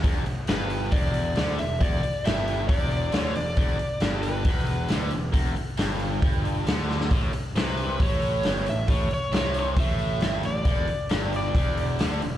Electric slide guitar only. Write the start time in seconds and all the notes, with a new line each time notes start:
0.50 B4
0.92 D5
1.59 E5
1.83 D5
2.26 E5
2.69 D5
3.17 C#5
3.36 D5
4.23 B4
7.58 B4
8.03 C#5
8.69 E5
8.90 C#5
9.14 C#5
9.37 C#5
9.59 C#5
9.80 E5
10.46 D5
11.37 D5